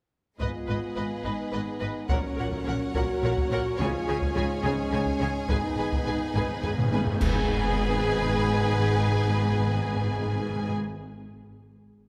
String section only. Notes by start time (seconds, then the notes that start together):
0.38 G#3 G#4 B4 D#5
2.09 C#4 A#4 C#5 F#5
3.77 G#4 G#5
5.48 D#4 B4
7.20 D#4 G#4 B4 G#5